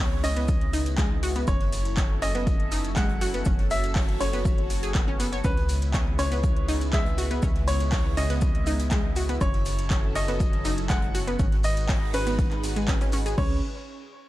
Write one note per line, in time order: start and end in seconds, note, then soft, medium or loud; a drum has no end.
0.00 1.45 C#2 medium
0.00 1.44 C#3 medium
0.00 1.44 G#3 medium
0.00 1.44 B3 medium
0.00 1.44 E4 medium
0.00 0.19 C#5 medium
0.24 0.29 C#4 medium
0.24 0.29 C#5 medium
0.24 1.38 D#5 medium
0.24 open hi-hat loud
0.24 maracas medium
0.24 shaker medium
0.36 0.44 B3 medium
0.36 0.44 B4 medium
0.36 snare soft
0.36 closed hi-hat medium
0.36 maracas soft
0.48 kick loud
0.48 closed hi-hat medium
0.48 shaker medium
0.48 maracas soft
0.61 closed hi-hat soft
0.73 0.78 D#4 medium
0.73 0.78 D#5 medium
0.73 open hi-hat loud
0.73 shaker medium
0.73 maracas medium
0.86 closed hi-hat medium
0.86 closed hi-hat soft
0.86 maracas medium
0.98 1.06 G#3 loud
0.98 1.06 G#4 medium
0.98 kick loud
0.98 snare loud
0.98 clap loud
0.98 closed hi-hat medium
0.98 shaker medium
0.98 maracas soft
1.23 1.31 F#4 medium
1.23 1.31 F#5 medium
1.23 open hi-hat loud
1.23 shaker medium
1.23 maracas loud
1.35 1.44 B3 medium
1.35 1.43 B4 medium
1.35 snare soft
1.35 closed hi-hat medium
1.35 maracas medium
1.47 3.44 F#1 medium
1.47 5.41 F#3 medium
1.47 1.53 C#4 medium
1.47 5.41 C#4 medium
1.47 3.44 E4 medium
1.47 5.40 A4 medium
1.47 1.53 C#5 medium
1.47 2.13 C#5 loud
1.47 kick loud
1.47 closed hi-hat medium
1.47 shaker medium
1.47 maracas soft
1.60 snare medium
1.60 closed hi-hat soft
1.72 open hi-hat loud
1.72 shaker medium
1.72 maracas medium
1.85 closed hi-hat medium
1.85 maracas medium
1.97 2.06 C#5 medium
1.97 2.06 C#6 medium
1.97 kick loud
1.97 snare loud
1.97 clap loud
1.97 closed hi-hat medium
1.97 shaker medium
1.97 maracas soft
2.22 2.27 C#4 medium
2.22 2.27 C#5 medium
2.22 2.87 D#5 medium
2.22 snare medium
2.22 open hi-hat loud
2.22 shaker medium
2.22 maracas loud
2.35 2.43 B3 medium
2.35 2.43 B4 medium
2.35 snare medium
2.35 closed hi-hat medium
2.35 maracas soft
2.47 kick loud
2.47 closed hi-hat medium
2.47 maracas soft
2.47 shaker medium
2.60 closed hi-hat soft
2.71 2.77 D#4 medium
2.71 2.77 D#5 medium
2.71 open hi-hat loud
2.71 shaker medium
2.71 maracas loud
2.84 closed hi-hat soft
2.84 maracas medium
2.96 3.05 G#3 loud
2.96 3.05 G#4 medium
2.96 3.61 F#5 medium
2.96 kick loud
2.96 snare loud
2.96 clap loud
2.96 closed hi-hat medium
2.96 shaker medium
2.96 maracas soft
3.09 closed hi-hat soft
3.21 3.30 F#4 medium
3.21 3.30 F#5 medium
3.21 open hi-hat loud
3.21 shaker medium
3.21 maracas loud
3.34 3.42 B3 medium
3.34 3.42 B4 medium
3.34 closed hi-hat medium
3.34 maracas medium
3.45 5.42 F#1 medium
3.45 3.51 C#4 medium
3.45 5.43 F#4 medium
3.45 3.51 C#5 medium
3.45 kick loud
3.45 closed hi-hat medium
3.45 shaker medium
3.45 maracas soft
3.59 snare soft
3.59 closed hi-hat soft
3.70 4.16 E5 medium
3.70 open hi-hat loud
3.70 shaker medium
3.70 maracas medium
3.84 closed hi-hat medium
3.84 maracas medium
3.95 4.04 C#5 medium
3.95 4.04 C#6 medium
3.95 kick loud
3.95 snare loud
3.95 clap loud
3.95 closed hi-hat medium
3.95 open hi-hat medium
3.95 maracas soft
4.09 closed hi-hat soft
4.20 4.25 C#4 medium
4.20 4.25 C#5 medium
4.20 5.35 C#5 medium
4.20 open hi-hat loud
4.20 shaker medium
4.20 maracas loud
4.33 4.41 B3 medium
4.33 4.41 B4 medium
4.33 snare medium
4.33 closed hi-hat soft
4.33 maracas medium
4.45 kick loud
4.45 closed hi-hat medium
4.45 maracas soft
4.45 shaker medium
4.58 closed hi-hat soft
4.70 open hi-hat loud
4.70 shaker medium
4.70 maracas loud
4.83 4.91 G#4 medium
4.83 4.91 G#5 medium
4.83 closed hi-hat soft
4.83 closed hi-hat medium
4.83 maracas medium
4.95 5.03 B3 medium
4.95 5.03 B4 medium
4.95 kick loud
4.95 snare loud
4.95 clap loud
4.95 closed hi-hat medium
4.95 shaker medium
4.95 maracas soft
5.08 5.15 C#4 medium
5.08 5.15 C#5 medium
5.20 5.28 B3 medium
5.20 5.28 B4 medium
5.20 open hi-hat loud
5.20 maracas loud
5.20 shaker medium
5.32 5.37 C#5 medium
5.32 5.37 C#6 medium
5.32 snare soft
5.32 closed hi-hat medium
5.32 maracas medium
5.44 7.40 C#2 medium
5.44 9.37 C#3 medium
5.44 9.37 G#3 medium
5.44 9.37 B3 medium
5.44 5.49 C#4 medium
5.44 11.36 E4 medium
5.44 6.09 B4 loud
5.44 5.49 C#5 medium
5.44 kick loud
5.44 closed hi-hat medium
5.44 shaker medium
5.44 maracas soft
5.57 snare soft
5.57 closed hi-hat soft
5.69 open hi-hat loud
5.69 maracas medium
5.69 shaker medium
5.82 closed hi-hat medium
5.82 maracas soft
5.94 6.02 C#5 medium
5.94 6.02 C#6 medium
5.94 kick loud
5.94 snare loud
5.94 clap loud
5.94 closed hi-hat medium
5.94 maracas soft
5.94 shaker medium
6.19 6.24 C#4 medium
6.19 6.24 C#5 medium
6.19 6.84 C#5 loud
6.19 snare medium
6.19 open hi-hat loud
6.19 maracas medium
6.19 shaker medium
6.32 6.39 B3 medium
6.32 6.39 B4 medium
6.32 snare medium
6.32 closed hi-hat medium
6.32 maracas medium
6.44 kick loud
6.44 closed hi-hat medium
6.44 shaker medium
6.44 maracas soft
6.57 closed hi-hat soft
6.68 6.73 D#4 medium
6.68 6.73 D#5 medium
6.68 open hi-hat loud
6.68 shaker medium
6.68 maracas loud
6.81 closed hi-hat medium
6.81 maracas medium
6.93 7.01 G#3 loud
6.93 7.01 G#4 medium
6.93 7.58 E5 medium
6.93 kick loud
6.93 snare loud
6.93 clap loud
6.93 closed hi-hat medium
6.93 shaker medium
6.93 maracas soft
7.06 closed hi-hat soft
7.18 7.26 F#4 medium
7.18 7.26 F#5 medium
7.18 open hi-hat loud
7.18 shaker medium
7.18 maracas loud
7.30 7.39 B3 medium
7.30 7.39 B4 medium
7.30 closed hi-hat medium
7.30 maracas soft
7.42 9.39 C#2 medium
7.42 7.48 C#4 medium
7.42 7.48 C#5 medium
7.42 kick loud
7.42 closed hi-hat medium
7.42 shaker medium
7.42 maracas soft
7.54 snare soft
7.54 closed hi-hat soft
7.68 8.12 C#5 medium
7.68 open hi-hat loud
7.68 maracas medium
7.68 shaker medium
7.80 closed hi-hat medium
7.80 maracas soft
7.92 8.01 C#5 medium
7.92 8.01 C#6 medium
7.92 kick loud
7.92 snare loud
7.92 clap loud
7.92 closed hi-hat medium
7.92 open hi-hat medium
7.92 maracas soft
8.17 8.22 C#4 medium
8.17 8.22 C#5 medium
8.17 9.32 D#5 medium
8.17 open hi-hat loud
8.17 maracas medium
8.17 shaker medium
8.30 8.38 B3 medium
8.30 8.38 B4 medium
8.30 snare medium
8.30 closed hi-hat medium
8.30 maracas medium
8.41 kick loud
8.41 closed hi-hat medium
8.41 shaker medium
8.41 maracas soft
8.55 closed hi-hat soft
8.66 8.72 D#4 medium
8.66 8.72 D#5 medium
8.66 open hi-hat loud
8.66 maracas medium
8.66 shaker medium
8.79 closed hi-hat soft
8.79 closed hi-hat medium
8.79 maracas medium
8.91 9.00 G#3 loud
8.91 9.00 G#4 medium
8.91 kick loud
8.91 snare loud
8.91 clap loud
8.91 closed hi-hat medium
8.91 shaker medium
8.91 maracas soft
9.16 9.25 F#4 medium
9.16 9.25 F#5 medium
9.16 open hi-hat loud
9.16 shaker medium
9.16 maracas medium
9.29 9.37 B3 medium
9.29 9.37 B4 medium
9.29 snare soft
9.29 closed hi-hat medium
9.29 maracas soft
9.41 11.37 F#1 medium
9.41 11.38 F#3 medium
9.41 9.46 C#4 medium
9.41 11.38 C#4 medium
9.41 11.38 A4 medium
9.41 9.46 C#5 medium
9.41 10.06 C#5 loud
9.41 kick loud
9.41 closed hi-hat medium
9.41 maracas soft
9.41 shaker medium
9.54 snare soft
9.54 closed hi-hat soft
9.65 open hi-hat loud
9.65 shaker medium
9.65 maracas medium
9.79 closed hi-hat medium
9.79 maracas medium
9.90 9.99 C#5 medium
9.90 9.99 C#6 medium
9.90 kick loud
9.90 snare loud
9.90 clap loud
9.90 closed hi-hat medium
9.90 maracas soft
9.90 shaker medium
10.15 10.20 C#4 medium
10.15 10.20 C#5 medium
10.15 10.80 D#5 loud
10.15 open hi-hat loud
10.15 shaker medium
10.15 maracas medium
10.28 10.36 B3 medium
10.28 10.36 B4 medium
10.28 snare medium
10.28 closed hi-hat medium
10.28 maracas medium
10.39 kick loud
10.39 closed hi-hat medium
10.39 maracas soft
10.39 shaker medium
10.53 closed hi-hat soft
10.65 10.70 D#4 medium
10.65 10.70 D#5 medium
10.65 open hi-hat loud
10.65 maracas medium
10.65 shaker medium
10.77 closed hi-hat medium
10.77 maracas medium
10.90 10.98 G#3 loud
10.90 10.98 G#4 medium
10.90 11.55 F#5 loud
10.90 kick loud
10.90 snare loud
10.90 clap loud
10.90 closed hi-hat medium
10.90 shaker medium
10.90 maracas soft
11.02 closed hi-hat soft
11.15 11.23 F#4 medium
11.15 11.23 F#5 medium
11.15 open hi-hat loud
11.15 maracas medium
11.15 shaker medium
11.27 11.35 B3 medium
11.27 11.35 B4 medium
11.27 closed hi-hat medium
11.27 maracas medium
11.39 13.35 G#1 medium
11.39 13.36 G#3 medium
11.39 11.44 C#4 medium
11.39 13.36 D#4 medium
11.39 13.36 F#4 medium
11.39 13.36 B4 medium
11.39 11.44 C#5 medium
11.39 kick loud
11.39 closed hi-hat medium
11.39 maracas soft
11.39 shaker medium
11.52 snare soft
11.52 closed hi-hat soft
11.63 12.09 D#5 medium
11.63 open hi-hat loud
11.63 maracas medium
11.63 shaker medium
11.77 closed hi-hat medium
11.77 maracas medium
11.89 11.97 C#5 medium
11.89 11.97 C#6 medium
11.89 kick loud
11.89 snare loud
11.89 clap loud
11.89 closed hi-hat medium
11.89 open hi-hat medium
12.13 12.19 C#4 medium
12.13 13.28 B4 loud
12.13 12.19 C#5 medium
12.13 snare loud
12.13 open hi-hat loud
12.13 shaker medium
12.13 maracas medium
12.26 12.34 B3 medium
12.26 12.34 B4 medium
12.26 snare loud
12.26 closed hi-hat medium
12.26 shaker medium
12.26 maracas medium
12.38 kick loud
12.38 snare loud
12.38 closed hi-hat medium
12.38 maracas soft
12.38 shaker medium
12.51 clap soft
12.51 closed hi-hat soft
12.63 snare loud
12.63 open hi-hat loud
12.63 shaker medium
12.63 maracas medium
12.76 12.88 G#3 medium
12.76 12.88 G#4 medium
12.76 closed hi-hat medium
12.76 maracas medium
12.88 12.97 C#4 loud
12.88 12.97 C#5 medium
12.88 kick loud
12.88 snare medium
12.88 clap loud
12.88 open hi-hat medium
12.88 maracas soft
12.88 shaker medium
13.01 13.09 C#4 medium
13.01 13.09 C#5 medium
13.01 snare loud
13.01 closed hi-hat soft
13.01 shaker medium
13.12 13.18 C#4 medium
13.12 13.18 C#5 medium
13.12 open hi-hat loud
13.12 maracas loud
13.26 13.37 G#4 medium
13.26 13.37 G#5 medium
13.26 snare soft
13.26 closed hi-hat medium
13.26 shaker medium
13.26 maracas medium
13.38 13.61 C#2 medium
13.38 13.61 C#4 loud
13.38 13.56 C#5 medium
13.38 kick loud
13.38 crash medium